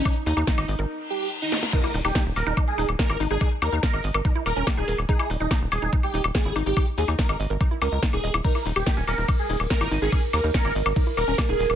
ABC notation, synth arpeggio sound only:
X:1
M:4/4
L:1/16
Q:1/4=143
K:Eb
V:1 name="Synth arpeggio sound"
E z E E z e e B z8 | E _F E E E z2 E E z E z2 F E E | E z E E z e e B E _F B _D G E B z | E _F E E E z2 E E z E z2 F E E |
E z E E z e e B E _F _D e E E e F | E _F E G E z2 E E z E z2 F E E | E z E E z e e B E _F B _D G E B z |]